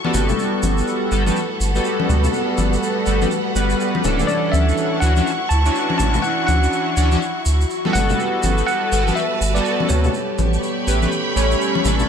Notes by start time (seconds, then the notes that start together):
Already playing: E4 F#4 A5 C#6
0.04 G3 B3 F#4 A4, high conga
0.14 G1 G3 A3 B3 F#4 B4, low conga, shaker
0.29 low conga, shaker
0.39 shaker
0.52 A4
0.63 G1, high conga, shaker
0.78 F#5, shaker
0.88 shaker
1.12 G1 G3 B3 F#4 A4, shaker
1.26 G3 B3 F#4 A4, high conga, shaker
1.36 shaker
1.61 G1, shaker
1.75 G3 B3 F#4 A4, shaker
1.84 shaker
2.00 high conga
2.09 D2, low conga, shaker
2.24 low conga, shaker
2.33 shaker
2.58 G1, high conga, shaker
2.73 shaker
2.83 shaker
3.06 G1 G3 B3 F#4 A4, shaker
3.21 G3 B3 F#4 A4, high conga, shaker
3.31 shaker
3.55 G1 G3 B3 F#4 B4, shaker
3.70 shaker
3.80 shaker
3.95 high conga
4.04 D1 E3 C#4 D4 A4, low conga, shaker
4.19 low conga, shaker
4.27 E4 F#4 D5 C#6, shaker
4.47 C#6
4.52 D2 E5, high conga, shaker
4.69 shaker
4.77 shaker
5.00 D2 E3 C#4 D4 F#4 F#5, shaker
5.17 E3 C#4 D4 F#4, high conga, shaker
5.27 shaker
5.49 D2 A5, shaker
5.65 E3 C#4 D4 F#4, shaker
5.75 shaker
5.90 high conga
5.98 A1 A5, low conga, shaker
6.14 low conga, shaker
6.22 F#5, shaker
6.47 D2 F#5, high conga, shaker
6.63 shaker
6.73 shaker
6.97 D2 E3 C#4 D4 F#4, shaker
7.12 E3 C#4 D4 F#4, high conga, shaker
7.22 shaker
7.46 D2, shaker
7.61 shaker
7.70 shaker
7.85 G3 B3 F#4 A4, high conga
7.93 G1 G3 B3 F#4 A4 F#5, low conga, shaker
8.09 low conga, shaker
8.16 B4, shaker
8.43 G1, high conga, shaker
8.58 A5, shaker
8.67 F#5, shaker
8.92 G1 G3 B3 F#4 A4, shaker
9.07 G3 B3 F#4 A4, high conga, shaker
9.15 E5, shaker
9.41 G1, shaker
9.55 G3 B3 F#4 A4 D5, shaker
9.65 shaker
9.80 high conga
9.89 D2 C#5, low conga, shaker
10.04 low conga, shaker
10.14 C#4 G4 A4, shaker
10.38 A1, high conga, shaker
10.46 C#6
10.53 shaker
10.60 B5, shaker
10.87 A1 A3 C#4 G4 B4, shaker
11.02 A3 C#4 G4 B4, high conga, shaker
11.12 shaker
11.36 A1 A3 C#4 G4 C#5, shaker
11.51 shaker
11.61 shaker
11.75 high conga
11.85 A1 E3 C#4 D4 A4, low conga, shaker
11.99 low conga, shaker